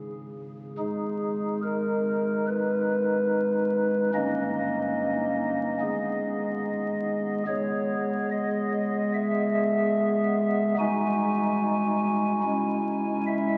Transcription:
0.00 0.74 C#1 medium
0.00 0.74 G#1 medium
0.00 0.74 C#2 medium
0.00 0.74 G#2 medium
0.00 0.74 C#3 medium
0.78 4.10 G#1 medium
0.78 4.10 G#2 medium
0.78 4.10 G#3 soft
0.78 4.10 D#4 soft
0.78 1.61 G#4 medium
1.63 2.45 A#4 medium
2.48 4.10 B4 loud
4.14 5.78 G1 medium
4.14 5.78 G2 medium
4.14 5.78 A#3 soft
4.14 5.78 C#4 medium
4.14 5.78 D#4 soft
4.14 7.44 D#5 loud
5.81 7.43 G#1 medium
5.81 7.43 G#2 medium
5.81 7.43 G#3 medium
5.81 7.43 B3 medium
5.81 7.43 G#4 medium
7.47 10.75 C#1 medium
7.47 10.75 C#2 medium
7.47 10.75 G#3 medium
7.47 10.74 B3 medium
7.47 10.74 G#4 medium
7.47 8.28 C#5 loud
8.31 9.12 D#5 loud
9.14 10.75 E5 loud
10.78 12.40 C1 medium
10.78 12.40 C2 medium
10.78 12.40 G#3 medium
10.78 12.40 D#4 medium
10.78 12.40 F#4 medium
10.78 13.23 G#5 loud
12.43 13.58 C#1 medium
12.43 13.58 C#2 medium
12.43 13.58 G#3 medium
12.43 13.58 C#4 medium
12.43 13.58 E4 medium
13.27 13.58 E5 loud

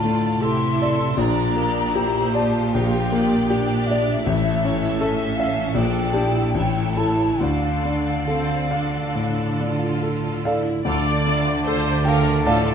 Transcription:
0.00 0.26 A2 soft
0.00 0.38 D3 soft
0.00 0.04 A3 soft
0.00 0.65 A3 soft
0.00 0.41 F4 soft
0.00 0.42 F4 soft
0.00 0.42 A4 soft
0.00 0.39 D5 soft
0.00 0.82 D5 soft
0.00 0.42 A5 medium
0.41 1.16 C3 soft
0.41 1.17 E4 soft
0.41 0.79 G4 soft
0.41 1.02 A4 soft
0.41 1.17 E5 soft
0.41 1.16 C6 medium
0.79 1.17 A4 soft
0.79 1.18 D5 soft
1.16 2.68 A#1 soft
1.16 4.25 A#2 medium
1.16 1.93 D4 soft
1.16 1.55 A#4 soft
1.16 1.93 D5 soft
1.16 2.33 A#5 medium
1.55 2.18 A#3 soft
1.55 1.93 G4 soft
1.92 2.32 E4 soft
1.92 2.72 G4 soft
1.92 2.57 G4 soft
1.92 2.73 C5 soft
2.33 3.49 F4 soft
2.33 2.96 D5 soft
2.33 2.73 A5 medium
2.71 4.22 A#1 soft
2.71 3.48 G4 soft
2.71 3.10 A#4 soft
2.71 3.88 G5 medium
3.12 3.73 A#3 soft
3.12 3.48 D5 medium
3.50 4.26 D4 soft
3.50 4.25 G4 soft
3.50 4.10 G4 soft
3.50 4.24 D5 soft
3.86 5.03 E5 medium
3.91 4.27 D5 soft
4.25 5.71 A1 medium
4.25 5.72 A2 medium
4.25 4.98 E4 soft
4.25 6.52 A4 soft
4.25 4.62 C#5 soft
4.63 5.23 C#4 soft
4.63 4.99 C#5 soft
5.00 5.36 C#4 soft
5.00 5.60 A4 soft
5.00 5.75 E5 medium
5.35 5.74 C#4 soft
5.35 5.74 F5 medium
5.40 5.76 E5 soft
5.74 6.53 A#1 soft
5.74 6.55 A#2 soft
5.74 6.15 D4 soft
5.74 6.55 D5 soft
5.74 6.95 G5 medium
6.13 6.51 D4 soft
6.13 6.53 E4 soft
6.13 6.51 G4 soft
6.54 7.38 A1 soft
6.54 7.40 A2 soft
6.54 7.38 E4 soft
6.54 7.39 A4 soft
6.54 6.94 C#5 soft
6.95 7.36 E4 soft
6.95 7.36 A4 soft
6.95 7.38 C#5 soft
6.95 7.40 A5 medium
7.39 9.12 D2 soft
7.39 10.62 D3 soft
7.39 8.20 D4 soft
7.39 10.62 A4 soft
7.39 10.66 D5 soft
7.39 10.02 F5 medium
7.85 8.55 D4 soft
8.27 8.69 C4 soft
8.27 8.98 A4 soft
8.71 9.59 D4 soft
8.71 9.42 F5 soft
9.15 9.85 A2 soft
9.59 10.29 D4 soft
9.59 10.45 F4 soft
10.03 10.45 A4 soft
10.45 10.87 E4 soft
10.45 11.66 A4 soft
10.45 12.02 D5 soft
10.45 12.02 F5 soft
10.85 12.40 D2 soft
10.85 12.74 D2 soft
10.85 12.74 D3 soft
10.85 12.02 D3 medium
10.85 12.74 A3 soft
10.85 12.74 D4 soft
10.85 11.04 F4 soft
10.85 11.05 A4 soft
10.85 11.62 D5 medium
10.85 12.74 D5 soft
10.85 11.05 F5 soft
10.85 12.74 A5 soft
11.05 11.26 D4 soft
11.05 11.25 F4 soft
11.05 11.27 D5 soft
11.26 11.90 D4 soft
11.26 11.44 F4 soft
11.26 11.46 A4 soft
11.26 11.47 F5 soft
11.45 11.66 D4 soft
11.45 11.63 F4 soft
11.45 11.67 D5 soft
11.65 11.84 F4 soft
11.65 11.84 A4 soft
11.65 12.30 A4 soft
11.65 12.06 C5 soft
11.69 11.86 F5 soft
11.86 12.06 D4 soft
11.86 12.05 F4 soft
11.86 12.07 D5 soft
12.05 12.24 F4 soft
12.05 12.26 A4 soft
12.05 12.44 A#4 soft
12.05 12.45 F5 soft
12.05 12.27 F5 soft
12.05 12.42 G5 soft
12.25 12.45 D4 soft
12.25 12.44 F4 soft
12.25 12.45 D5 soft
12.45 12.74 A2 soft
12.45 12.63 F4 soft
12.45 12.74 A4 soft
12.45 12.63 A4 soft
12.45 12.74 D5 soft
12.45 12.64 F5 soft
12.45 12.74 F5 soft
12.45 12.74 A5 medium
12.64 12.74 D4 soft
12.64 12.74 F4 soft
12.64 12.74 D5 soft

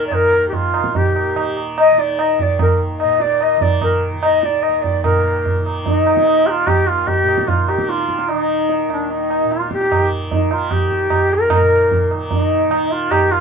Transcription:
0.00 0.24 D#2 medium
0.00 0.80 A#2 medium
0.00 1.36 D#3 medium
0.06 0.15 D5 medium
0.11 0.47 A#4 loud
0.11 tabla na medium
0.11 tabla ge medium
0.24 2.47 D#2 medium
0.33 tabla te medium
0.48 0.55 G4 medium
0.53 0.97 F4 medium
0.53 tabla tin medium
0.53 tabla ge medium
0.74 tabla na medium
0.80 3.03 A#2 medium
0.80 tabla ke medium
0.95 1.57 G4 medium
0.95 tabla tin medium
0.95 tabla ge medium
1.16 tabla na medium
1.36 1.92 D#3 medium
1.36 tabla na medium
1.57 tabla na medium
1.78 2.01 D#5 loud
1.78 tabla na medium
1.92 3.57 D#3 medium
1.98 2.22 D5 medium
1.98 tabla te medium
2.19 2.43 D#5 loud
2.19 tabla na medium
2.39 2.61 D5 medium
2.39 tabla tin medium
2.39 tabla ge medium
2.48 4.69 D#2 medium
2.59 2.80 A#4 medium
2.59 tabla na medium
2.59 tabla ge medium
2.99 3.22 D#5 medium
2.99 tabla na medium
3.03 5.05 A#2 medium
3.20 3.44 D5 medium
3.20 tabla te medium
3.41 3.63 D#5 loud
3.41 tabla na medium
3.57 4.13 D#3 medium
3.57 tabla tin medium
3.57 tabla ge medium
3.61 3.82 D5 medium
3.81 4.02 A#4 medium
3.81 tabla na medium
3.81 tabla ge medium
4.13 5.60 D#3 medium
4.22 4.41 D#5 medium
4.22 tabla na medium
4.41 4.64 D5 medium
4.41 4.46 D#5 medium
4.41 tabla te medium
4.62 4.83 D#5 medium
4.62 tabla na medium
4.69 6.69 D#2 medium
4.82 5.03 D5 medium
4.82 tabla tin medium
4.82 tabla ge medium
5.04 7.23 A#2 medium
5.04 5.61 A#4 medium
5.04 tabla na loud
5.04 tabla ge medium
5.46 tabla tin medium
5.46 tabla ge medium
5.60 6.14 D#3 medium
5.66 tabla na medium
5.84 6.47 D#4 medium
5.84 tabla tin medium
5.84 tabla ge medium
6.07 tabla na medium
6.14 7.78 D#3 medium
6.14 tabla ke medium
6.27 tabla na medium
6.46 6.51 G4 medium
6.46 tabla na medium
6.50 6.68 F4 loud
6.67 8.88 D#2 medium
6.67 6.88 G4 loud
6.67 tabla na medium
6.67 tabla ge medium
6.87 7.08 F4 medium
7.07 7.49 G4 loud
7.07 tabla tin medium
7.07 tabla ge medium
7.23 9.44 A#2 medium
7.28 tabla na medium
7.38 tabla ke medium
7.47 7.70 F4 medium
7.47 tabla tin medium
7.47 tabla ge medium
7.68 7.91 G4 medium
7.68 tabla na medium
7.78 8.34 D#3 medium
7.78 tabla ke medium
7.89 8.30 F4 medium
7.89 tabla te medium
7.98 tabla te medium
8.09 tabla ke medium
8.19 tabla te medium
8.29 8.89 D#4 medium
8.29 tabla na medium
8.34 9.97 D#3 medium
8.69 tabla tin medium
8.88 11.06 D#2 medium
8.88 9.12 D4 medium
8.88 tabla na medium
9.10 9.53 D#4 medium
9.10 tabla tin medium
9.30 tabla na medium
9.44 11.59 A#2 medium
9.51 9.71 F4 medium
9.51 tabla te medium
9.61 tabla te medium
9.71 10.09 G4 medium
9.71 tabla ke medium
9.81 tabla te medium
9.92 tabla na medium
9.92 tabla ge medium
9.97 10.52 D#3 medium
10.31 10.53 D#4 medium
10.31 tabla tin medium
10.31 tabla ge medium
10.51 12.14 D#3 medium
10.51 10.72 F4 medium
10.51 tabla na medium
10.71 11.35 G4 medium
10.71 tabla na medium
10.71 tabla ge medium
10.90 tabla ge medium
11.06 13.23 D#2 medium
11.06 tabla na medium
11.06 tabla ge medium
11.30 11.52 A#4 medium
11.30 tabla te medium
11.50 12.08 A#4 medium
11.50 tabla na loud
11.50 tabla ge loud
11.60 13.40 A#2 medium
11.91 tabla tin medium
11.91 tabla ge medium
12.11 12.70 D#3 medium
12.11 tabla na medium
12.31 12.93 D#4 medium
12.31 tabla tin medium
12.31 tabla ge medium
12.70 13.40 D#3 medium
12.70 tabla na medium
12.91 13.12 F4 medium
13.11 13.33 G4 loud
13.11 tabla na medium
13.11 tabla ge medium
13.23 13.40 D#2 medium
13.31 13.40 F4 loud
13.31 tabla te medium

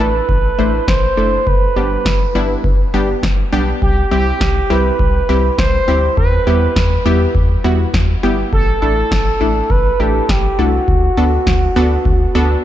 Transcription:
0.00 0.20 A1 loud
0.00 0.17 A3 medium
0.00 0.17 D4 medium
0.00 0.17 E4 medium
0.00 0.17 A4 medium
0.00 0.90 B4 loud
0.29 0.50 A1 loud
0.29 kick loud
0.59 0.79 A1 medium
0.59 0.76 A3 medium
0.59 0.76 D4 medium
0.59 0.76 E4 medium
0.59 0.76 C5 medium
0.88 1.08 A1 loud
0.88 1.48 C5 loud
0.88 kick loud
0.88 snare loud
1.17 1.38 F#1 loud
1.17 1.35 A3 medium
1.17 1.35 D4 medium
1.17 1.35 E4 medium
1.17 1.35 A4 medium
1.47 1.67 G1 loud
1.47 2.64 B4 loud
1.47 kick loud
1.76 1.97 G1 medium
1.76 1.94 G3 medium
1.76 1.94 B3 medium
1.76 1.94 D4 medium
1.76 1.94 G4 medium
2.05 2.26 G1 loud
2.05 kick loud
2.05 snare loud
2.35 2.56 G1 loud
2.35 2.53 G3 medium
2.35 2.53 B3 medium
2.35 2.53 D4 medium
2.35 2.53 E4 loud
2.64 2.85 G1 loud
2.64 kick loud
2.94 3.14 G1 medium
2.94 3.12 G3 medium
2.94 3.12 B3 medium
2.94 3.12 D4 medium
2.94 3.12 G4 loud
3.23 3.44 G1 loud
3.23 kick loud
3.23 snare loud
3.53 3.73 B1 medium
3.53 3.70 G3 medium
3.53 3.70 B3 medium
3.53 3.70 D4 medium
3.53 3.70 G4 loud
3.82 4.03 C2 loud
3.82 4.09 G4 medium
3.82 kick loud
4.11 4.32 C2 loud
4.11 4.29 G3 medium
4.11 4.29 C4 medium
4.11 4.29 E4 medium
4.11 4.29 G4 medium
4.11 4.72 G4 medium
4.41 4.61 C2 loud
4.41 kick loud
4.41 snare loud
4.70 4.91 C2 medium
4.70 4.88 G3 medium
4.70 4.88 C4 medium
4.70 4.88 E4 medium
4.70 4.88 G4 medium
4.70 5.58 B4 loud
4.99 5.20 C2 loud
4.99 kick loud
5.29 5.50 C2 loud
5.29 5.47 G3 medium
5.29 5.47 C4 medium
5.29 5.47 E4 medium
5.29 5.47 G4 medium
5.58 5.79 C2 medium
5.58 6.13 C5 loud
5.58 kick loud
5.58 snare loud
5.88 6.09 D2 medium
5.88 6.06 G3 medium
5.88 6.06 C4 medium
5.88 6.06 E4 medium
5.88 6.06 G4 medium
6.17 6.38 E2 loud
6.17 7.31 B4 loud
6.17 kick loud
6.47 6.67 E2 loud
6.47 6.65 G3 medium
6.47 6.65 B3 medium
6.47 6.65 E4 medium
6.47 6.65 G4 medium
6.76 6.97 E2 loud
6.76 kick loud
6.76 snare loud
7.05 7.26 E2 loud
7.05 7.23 G3 medium
7.05 7.23 B3 medium
7.05 7.23 E4 medium
7.05 7.23 G4 loud
7.35 7.55 E2 loud
7.35 kick loud
7.64 7.85 E2 loud
7.64 7.82 G3 medium
7.64 7.82 B3 medium
7.64 7.82 E4 medium
7.64 7.82 F#4 loud
7.94 8.14 E2 loud
7.94 kick loud
7.94 snare loud
8.23 8.44 G1 medium
8.23 8.41 G3 medium
8.23 8.41 B3 medium
8.23 8.41 E4 medium
8.23 8.41 G4 loud
8.53 8.73 A1 loud
8.53 8.80 A4 loud
8.53 kick loud
8.82 9.03 A1 loud
8.82 9.00 A3 medium
8.82 9.00 D4 medium
8.82 9.00 E4 medium
8.82 9.72 A4 loud
8.82 9.00 A4 medium
9.11 9.32 A1 loud
9.11 kick loud
9.11 snare loud
9.41 9.61 A1 medium
9.41 9.59 A3 medium
9.41 9.59 D4 medium
9.41 9.59 E4 medium
9.41 9.59 A4 medium
9.70 9.91 A1 loud
9.70 10.01 B4 loud
9.70 kick loud
10.00 10.20 A1 loud
10.00 10.17 A3 medium
10.00 10.18 D4 medium
10.00 10.17 E4 medium
10.00 10.17 G4 medium
10.00 10.31 A4 loud
10.29 10.50 A1 loud
10.29 10.60 G4 medium
10.29 kick loud
10.29 snare loud
10.58 10.79 C2 medium
10.58 10.76 A3 medium
10.58 10.76 D4 medium
10.58 10.76 E4 medium
10.58 12.64 F#4 medium
10.58 10.76 A4 medium
10.88 11.09 D2 loud
10.88 kick loud
11.17 11.38 D2 loud
11.17 11.35 B3 medium
11.17 11.35 D4 medium
11.17 11.35 F#4 medium
11.17 11.35 A4 medium
11.47 11.67 D2 loud
11.47 kick loud
11.47 snare loud
11.76 11.97 D2 loud
11.76 11.94 B3 medium
11.76 11.94 D4 medium
11.76 11.94 F#4 medium
11.76 11.94 A4 loud
12.05 12.26 D2 loud
12.05 kick loud
12.35 12.56 D2 loud
12.35 12.53 B3 medium
12.35 12.53 D4 medium
12.35 12.53 F#4 medium
12.35 12.53 A4 loud

